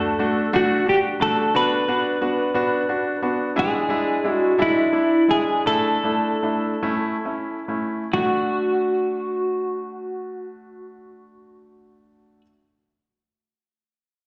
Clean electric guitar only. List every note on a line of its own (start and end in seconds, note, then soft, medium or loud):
0.00 0.51 A4 medium
0.56 0.86 F#4 medium
0.89 0.98 G4 medium
1.22 1.53 A4 medium
1.56 3.20 B4 medium
3.59 4.32 G#4 medium
4.32 4.64 F#4 medium
4.62 5.27 E4 medium
5.31 5.67 G#4 medium
5.67 7.64 A4 medium
8.13 12.41 F#4 medium